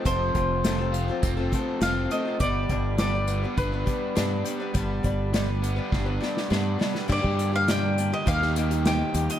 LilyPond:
<<
  \new Staff \with { instrumentName = "Mandolin" } { \time 4/4 \key g \minor \tempo 4 = 102 c''2. f''8 ees''8 | d''4 d''4 b'2~ | b'2. r4 | \key g \phrygian d''8. f''16 g''8. ees''16 f''4 g''8. ees''16 | }
  \new Staff \with { instrumentName = "Steel-string acoustic guitar" } { \time 4/4 \key g \minor <f c' f' a'>8 <f c' f' a'>8 <f c' f' a'>16 <c' f' a'>8 <c' f' a'>8 <c' f' a'>16 <f c' f' a'>8 <f c' f' a'>8 <f c' f' a'>16 <c' f' a'>16 | <g, d g b d' b'>8 <g b d' b'>8 <g, d g b d' b'>16 <g b d' b'>8 <g b d' b'>8 <g b d' b'>16 <g b d' b'>8 <g, d g b d' b'>8 <g b d' b'>16 <g b d' b'>16 | <g, d g b d' b'>8 <g b d' b'>8 <g, d g b d' b'>16 <g b d' b'>8 <g b d' b'>8 <g b d' b'>16 <g b d' b'>8 <g, d g b d' b'>8 <g b d' b'>16 <g b d' b'>16 | \key g \phrygian <g, d g bes d' g'>16 <g bes d' g'>8 <g bes d' g'>16 <g, d g bes d' g'>8 <g bes d' g'>16 <g bes d' g'>16 <ees f bes ees' g'>16 <bes ees' g'>16 <f bes ees' g'>16 <bes ees' g'>16 <ees f bes ees' g'>8 <f bes ees' g'>8 | }
  \new Staff \with { instrumentName = "Overdriven electric guitar" } { \time 4/4 \key g \minor <f a c'>4 a8 f'8 c'8 a4 a8 | g4 g8 b8 d'8 g8 d'8 g8 | g4 g8 b8 d'8 g8 d'8 g8 | \key g \phrygian <g, d g bes d' g'>2 <ees g bes ees' g'>2 | }
  \new Staff \with { instrumentName = "Fingered electric bass" } { \clef bass \time 4/4 \key g \minor f,,8 f,,4. f,,8 r8 f,,8 r8 | g,,8 g,,4. g,,8 r8 g,8 r8 | g,,8 g,,4. g,,8 r8 g,8 r8 | \key g \phrygian g,16 g,4.~ g,16 ees,4. ees,16 r16 | }
  \new DrumStaff \with { instrumentName = "Drums" } \drummode { \time 4/4 <hh bd>8 <hh bd>8 <hh sn>8 hh8 <hh bd>8 <hh bd>8 <hh sn>8 hh8 | <hh bd>8 <hh bd>8 <hh sn>8 hh8 <hh bd>8 <hh bd>8 <hh sn>8 hh8 | <hh bd>8 <hh bd>8 <hh sn>8 hh8 <bd sn>8 sn16 sn16 sn8 sn16 sn16 | <cymc bd>16 bd16 hh8 <hh sn>8 hh8 <hh bd>16 sn16 hh16 hh16 <hh sn>8 hh16 hh16 | }
>>